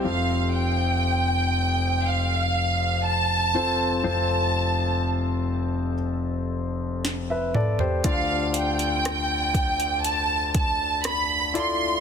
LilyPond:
<<
  \new Staff \with { instrumentName = "Violin section" } { \time 4/4 \key f \lydian \tempo 4 = 60 f''8 g''4. f''4 a''4 | a''4 r2. | f''8 g''4. a''8 a''8 b''8 c'''8 | }
  \new Staff \with { instrumentName = "Grand piano" } { \time 4/4 \key f \lydian << { r1 | r2. r16 <b' e''>16 <a' d''>16 <g' c''>16~ | <g' c''>16 r2. r8. | } \\ { <c' f' a' c''>2 r4. <c' f' a' c''>8 | <c' f' a' c''>2 r2 | <d' f' a' d''>2 r4. <e' f' a' d''>8 | } >> }
  \new Staff \with { instrumentName = "Grand piano" } { \clef bass \time 4/4 \key f \lydian <f,, f,>1 | <f,, f,>1 | <d, d>1 | }
  \new DrumStaff \with { instrumentName = "Drums" } \drummode { \time 4/4 r4 r4 r4 r4 | r4 r4 r4 sn8 toml16 tomfh16 | <hh bd>8 hh16 hh16 <hh ss>8 <hh bd>16 hh16 hh8 <hh bd>8 <hh ss>8 hh8 | }
>>